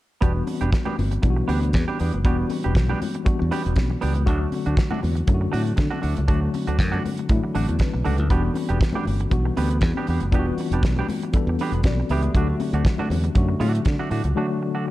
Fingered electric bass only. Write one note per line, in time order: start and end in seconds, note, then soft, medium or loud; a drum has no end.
0.23 0.41 E1 loud
0.62 0.70 E1 medium
0.99 1.17 G1 medium
1.24 1.42 B1 medium
1.49 1.74 D2 medium
1.74 1.84 E2 medium
2.01 2.10 E2 medium
2.14 2.25 F#1 medium
2.25 2.43 E1 loud
2.66 2.73 E1 medium
2.75 2.93 B1 medium
3.27 muted fingered electric bass stroke soft
3.42 3.49 E2 medium
3.66 3.74 E1 medium
3.77 3.95 B1 medium
4.03 4.28 C#2 medium
4.28 4.45 D2 loud
4.67 4.75 D2 medium
5.03 5.21 E2 medium
5.28 5.46 F#2 medium
5.54 5.71 A2 medium
5.78 5.88 D3 medium
6.04 6.13 D2 medium
6.18 6.26 C#2 medium
6.29 6.47 D2 loud
6.68 6.80 D2 medium
6.80 6.97 F#2 medium
7.30 7.39 A2 medium
7.56 7.65 A1 medium
7.69 7.77 E2 medium
7.95 8.03 B1 medium
8.07 8.19 C#2 medium
8.19 8.27 D2 medium
8.30 8.48 E1 loud
8.70 8.78 E1 medium
9.07 9.25 G1 medium
9.32 9.50 B1 medium
9.58 9.82 D2 medium
9.82 9.92 E2 medium
10.08 10.17 E2 medium
10.21 10.33 F#1 medium
10.33 10.50 E1 loud
10.71 10.80 E1 medium
10.83 11.01 B1 medium
11.34 muted fingered electric bass stroke soft
11.47 11.55 E2 loud
11.72 11.80 E1 medium
11.85 12.02 B1 medium
12.10 12.27 C#2 medium
12.35 12.53 D2 loud
12.73 12.81 D2 medium
13.10 13.28 E2 medium
13.36 13.54 F#2 medium
13.60 13.78 A2 medium
13.86 13.95 D3 medium
14.11 14.20 A2 medium
14.24 14.32 C#2 medium